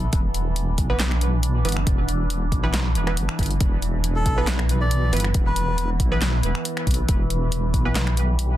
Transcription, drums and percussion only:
0.13 kick loud
0.13 closed hi-hat medium
0.34 closed hi-hat medium
0.56 closed hi-hat medium
0.78 kick medium
0.78 closed hi-hat medium
1.00 snare loud
1.00 clap medium
1.00 closed hi-hat medium
1.11 finger snap medium
1.21 closed hi-hat medium
1.43 closed hi-hat medium
1.65 closed hi-hat soft
1.69 closed hi-hat medium
1.72 closed hi-hat medium
1.77 finger snap medium
1.87 kick loud
1.87 closed hi-hat medium
2.09 closed hi-hat medium
2.30 closed hi-hat medium
2.52 kick medium
2.52 closed hi-hat soft
2.74 snare loud
2.74 clap medium
2.74 closed hi-hat medium
2.95 closed hi-hat medium
3.07 finger snap medium
3.17 closed hi-hat medium
3.29 finger snap medium
3.39 kick medium
3.39 closed hi-hat soft
3.43 closed hi-hat medium
3.46 closed hi-hat medium
3.51 closed hi-hat soft
3.61 kick loud
3.61 closed hi-hat medium
3.82 closed hi-hat medium
4.04 closed hi-hat medium
4.26 kick medium
4.26 closed hi-hat soft
4.47 snare loud
4.47 clap medium
4.47 closed hi-hat medium
4.59 finger snap medium
4.69 closed hi-hat medium
4.91 closed hi-hat medium
5.13 closed hi-hat soft
5.17 closed hi-hat medium
5.20 closed hi-hat medium
5.24 finger snap medium
5.34 kick loud
5.34 closed hi-hat medium
5.56 closed hi-hat medium
5.78 closed hi-hat medium
6.00 kick medium
6.00 closed hi-hat medium
6.22 snare loud
6.22 clap medium
6.22 closed hi-hat medium
6.43 closed hi-hat medium
6.55 finger snap medium
6.65 closed hi-hat medium
6.77 finger snap medium
6.87 kick medium
6.87 closed hi-hat soft
6.91 closed hi-hat medium
6.94 closed hi-hat medium
7.09 kick loud
7.09 closed hi-hat medium
7.30 closed hi-hat medium
7.52 closed hi-hat medium
7.74 kick medium
7.74 closed hi-hat medium
7.95 snare loud
7.95 clap medium
7.95 closed hi-hat medium
8.07 finger snap medium
8.17 closed hi-hat medium
8.39 closed hi-hat medium

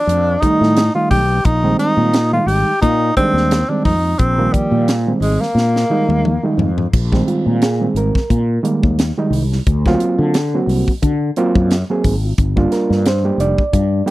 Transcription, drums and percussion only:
0.09 closed hi-hat medium
0.43 kick medium
0.43 closed hi-hat medium
0.63 snare soft
0.77 snare loud
0.77 closed hi-hat medium
1.11 kick medium
1.11 open hi-hat medium
1.45 kick medium
1.45 closed hi-hat medium
1.79 closed hi-hat medium
2.14 snare loud
2.14 closed hi-hat medium
2.48 open hi-hat medium
2.83 kick medium
2.83 closed hi-hat medium
3.17 kick medium
3.17 closed hi-hat soft
3.37 snare soft
3.51 snare medium
3.51 closed hi-hat medium
3.85 kick medium
3.85 open hi-hat medium
4.19 kick medium
4.19 closed hi-hat medium
4.54 kick medium
4.54 closed hi-hat medium
4.88 snare loud
4.88 closed hi-hat medium
5.22 open hi-hat medium
5.43 snare soft
5.57 snare medium
5.76 snare soft
6.10 high tom medium
6.25 mid tom medium
6.59 floor tom medium
6.78 floor tom medium
6.93 kick medium
6.93 crash medium
7.12 kick medium
7.12 snare soft
7.28 closed hi-hat medium
7.62 snare loud
7.62 closed hi-hat medium
7.96 closed hi-hat medium
8.15 kick medium
8.15 snare soft
8.30 kick medium
8.30 closed hi-hat medium
8.65 closed hi-hat medium
8.83 kick medium
8.99 snare loud
8.99 closed hi-hat medium
9.33 open hi-hat medium
9.52 snare soft
9.67 kick medium
9.67 closed hi-hat medium
9.86 kick medium
9.86 snare soft
10.00 closed hi-hat medium
10.34 snare loud
10.34 closed hi-hat medium
10.69 open hi-hat medium
10.88 kick medium
11.03 kick medium
11.03 closed hi-hat medium
11.36 closed hi-hat medium
11.55 kick medium
11.71 snare loud
11.71 closed hi-hat medium
12.04 kick medium
12.04 open hi-hat medium
12.38 kick medium
12.38 closed hi-hat medium
12.57 kick medium
12.72 snare soft
12.72 closed hi-hat medium
12.92 snare soft
13.06 snare loud
13.06 closed hi-hat medium
13.40 closed hi-hat medium
13.58 kick medium
13.73 kick medium
13.73 closed hi-hat medium

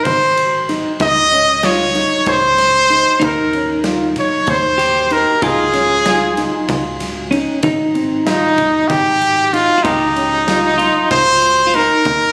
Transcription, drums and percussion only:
0.05 kick medium
0.05 ride medium
0.37 ride medium
0.69 snare soft
0.69 ride medium
1.00 kick loud
1.00 ride medium
1.31 ride medium
1.63 snare loud
1.63 ride medium
1.95 snare soft
1.95 ride medium
2.26 kick loud
2.26 ride medium
2.58 snare soft
2.58 ride medium
2.90 ride medium
3.22 kick loud
3.22 ride medium
3.53 ride medium
3.84 snare loud
3.84 ride medium
4.16 kick medium
4.16 snare soft
4.16 ride medium
4.47 kick loud
4.47 ride medium
4.79 snare soft
4.79 ride medium
5.10 ride medium
5.42 kick loud
5.42 ride medium
5.74 snare soft
5.74 ride medium
6.06 snare loud
6.06 ride medium
6.37 snare soft
6.37 ride medium
6.69 kick loud
6.69 snare soft
6.69 ride medium
7.00 snare soft
7.00 ride medium
7.32 ride medium
7.63 kick loud
7.63 ride medium
7.95 ride medium
8.27 snare loud
8.27 ride medium
8.58 kick medium
8.58 ride medium
8.90 kick loud
8.90 ride medium
9.22 ride medium
9.54 ride medium
9.85 kick loud
9.85 ride medium
10.16 ride medium
10.48 snare loud
10.48 ride medium
10.79 ride medium
11.11 kick loud
11.11 ride medium
11.42 ride medium
11.74 ride medium
12.05 kick loud
12.05 closed hi-hat medium

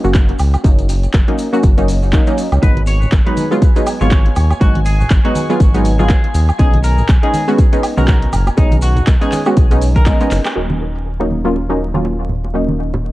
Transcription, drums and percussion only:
0.04 maracas soft
0.14 kick loud
0.14 clap loud
0.14 closed hi-hat medium
0.14 maracas medium
0.29 closed hi-hat soft
0.39 open hi-hat loud
0.39 high woodblock medium
0.39 maracas medium
0.54 closed hi-hat soft
0.54 high woodblock medium
0.54 maracas soft
0.64 kick loud
0.64 closed hi-hat medium
0.64 maracas medium
0.78 closed hi-hat soft
0.78 maracas soft
0.89 open hi-hat loud
0.89 maracas medium
1.03 closed hi-hat soft
1.03 maracas soft
1.14 kick loud
1.14 clap loud
1.14 closed hi-hat medium
1.14 maracas medium
1.28 closed hi-hat soft
1.38 open hi-hat loud
1.38 maracas loud
1.54 maracas soft
1.63 kick loud
1.63 closed hi-hat medium
1.63 maracas medium
1.78 closed hi-hat medium
1.78 maracas soft
1.88 open hi-hat loud
1.88 maracas medium
2.02 maracas soft
2.13 kick loud
2.13 clap loud
2.13 closed hi-hat medium
2.13 maracas medium
2.27 closed hi-hat soft
2.27 maracas soft
2.38 open hi-hat loud
2.38 maracas loud
2.52 closed hi-hat soft
2.52 high woodblock medium
2.52 maracas soft
2.63 kick loud
2.63 closed hi-hat medium
2.63 maracas medium
2.77 closed hi-hat soft
2.77 high bongo medium
2.77 high conga medium
2.87 open hi-hat loud
2.87 maracas medium
3.02 low conga medium
3.02 maracas soft
3.12 kick loud
3.12 clap loud
3.12 closed hi-hat medium
3.12 maracas medium
3.27 closed hi-hat soft
3.37 open hi-hat loud
3.37 high conga medium
3.37 maracas medium
3.52 maracas soft
3.62 kick loud
3.62 closed hi-hat medium
3.62 maracas soft
3.76 closed hi-hat soft
3.76 maracas soft
3.87 open hi-hat loud
3.87 high woodblock medium
3.87 maracas medium
4.01 high conga medium
4.01 maracas soft
4.11 kick loud
4.11 clap loud
4.11 closed hi-hat medium
4.11 maracas soft
4.26 closed hi-hat soft
4.36 open hi-hat loud
4.36 low conga medium
4.36 high woodblock medium
4.36 maracas medium
4.50 closed hi-hat soft
4.50 high bongo medium
4.50 high woodblock medium
4.50 maracas soft
4.61 kick loud
4.61 closed hi-hat medium
4.61 maracas soft
4.75 closed hi-hat medium
4.75 high bongo medium
4.75 high conga medium
4.86 open hi-hat loud
4.86 maracas medium
5.00 low conga medium
5.00 maracas soft
5.10 kick loud
5.10 clap loud
5.10 closed hi-hat medium
5.10 maracas medium
5.25 closed hi-hat medium
5.35 open hi-hat loud
5.35 high conga medium
5.35 maracas medium
5.50 maracas soft
5.60 kick loud
5.60 closed hi-hat medium
5.60 maracas medium
5.74 closed hi-hat soft
5.74 maracas soft
5.85 open hi-hat loud
5.85 maracas medium
5.99 high conga medium
5.99 maracas soft
6.09 kick loud
6.09 clap loud
6.09 closed hi-hat medium
6.09 maracas medium
6.24 closed hi-hat soft
6.34 open hi-hat loud
6.34 maracas loud
6.49 closed hi-hat soft
6.49 high woodblock medium
6.49 maracas soft
6.59 kick loud
6.59 closed hi-hat medium
6.59 maracas soft
6.74 closed hi-hat medium
6.74 high bongo medium
6.74 high conga medium
6.84 open hi-hat loud
6.84 maracas medium
6.98 low conga medium
6.98 maracas soft
7.09 kick loud
7.09 clap loud
7.09 closed hi-hat medium
7.09 maracas medium
7.23 closed hi-hat medium
7.34 open hi-hat medium
7.34 high conga medium
7.34 maracas medium
7.48 maracas soft
7.58 kick loud
7.58 closed hi-hat medium
7.58 maracas soft
7.73 closed hi-hat medium
7.73 maracas soft
7.83 open hi-hat loud
7.83 high woodblock medium
7.83 maracas medium
7.97 high conga medium
7.97 maracas soft
8.08 kick loud
8.08 clap loud
8.08 closed hi-hat medium
8.08 maracas soft
8.22 closed hi-hat medium
8.33 open hi-hat loud
8.33 low conga medium
8.33 high woodblock medium
8.33 maracas medium
8.47 closed hi-hat soft
8.47 high bongo medium
8.47 high woodblock medium
8.47 maracas soft
8.58 kick loud
8.58 closed hi-hat medium
8.58 maracas soft
8.72 closed hi-hat medium
8.72 high bongo medium
8.72 high conga medium
8.72 maracas soft
8.82 open hi-hat loud
8.82 maracas medium
8.96 closed hi-hat soft
8.96 low conga medium
8.96 maracas soft
9.07 kick loud
9.07 clap loud
9.07 closed hi-hat medium
9.07 maracas medium
9.21 closed hi-hat medium
9.21 maracas soft
9.32 clap medium
9.32 open hi-hat loud
9.32 high conga medium
9.32 maracas medium
9.46 closed hi-hat soft
9.46 high woodblock medium
9.46 maracas soft
9.57 kick loud
9.57 closed hi-hat medium
9.57 maracas soft
9.71 closed hi-hat medium
9.71 maracas soft
9.81 open hi-hat loud
9.81 maracas medium
9.95 kick medium
9.95 closed hi-hat soft
9.95 high conga medium
9.95 maracas soft
10.06 kick loud
10.06 clap loud
10.06 closed hi-hat medium
10.06 maracas medium
10.20 closed hi-hat medium
10.20 maracas soft
10.31 clap medium
10.31 open hi-hat loud
10.31 maracas medium
10.45 clap loud
10.45 open hi-hat medium
10.45 high bongo medium
10.45 high woodblock medium
10.45 maracas soft
10.70 high bongo soft
10.70 high conga medium
11.21 high bongo medium
11.31 high conga medium
11.56 high bongo soft
11.95 high conga medium
12.05 high bongo medium
12.29 low conga medium
12.44 high bongo soft
12.68 high conga medium
12.94 high bongo medium
12.94 low conga medium

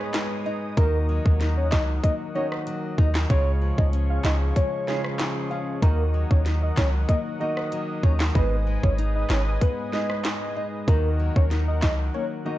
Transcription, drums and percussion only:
0.14 snare loud
0.14 clap loud
0.14 closed hi-hat medium
0.77 kick loud
0.77 closed hi-hat medium
1.26 kick loud
1.41 snare medium
1.41 closed hi-hat medium
1.72 kick loud
1.72 snare loud
1.72 clap loud
2.04 kick loud
2.04 closed hi-hat medium
2.52 cross-stick medium
2.67 closed hi-hat medium
2.98 kick loud
3.15 snare loud
3.15 clap loud
3.30 kick loud
3.30 closed hi-hat medium
3.78 kick loud
3.93 closed hi-hat medium
4.25 snare loud
4.25 clap loud
4.56 kick medium
4.56 closed hi-hat medium
4.88 snare medium
5.04 cross-stick loud
5.19 snare loud
5.19 clap medium
5.19 closed hi-hat medium
5.82 kick loud
5.82 closed hi-hat medium
6.31 kick loud
6.46 snare medium
6.46 closed hi-hat medium
6.77 kick loud
6.77 snare loud
6.77 clap loud
7.09 kick loud
7.09 closed hi-hat medium
7.57 cross-stick loud
7.72 closed hi-hat medium
8.03 kick medium
8.20 snare loud
8.20 clap loud
8.35 kick loud
8.35 closed hi-hat medium
8.83 kick loud
8.98 closed hi-hat medium
9.30 snare loud
9.30 clap loud
9.61 kick loud
9.61 closed hi-hat medium
9.93 snare medium
10.10 cross-stick loud
10.25 snare loud
10.25 clap medium
10.25 closed hi-hat medium
10.88 kick loud
10.88 closed hi-hat medium
11.36 kick loud
11.51 snare medium
11.51 closed hi-hat medium
11.82 kick loud
11.82 snare loud
11.82 clap loud

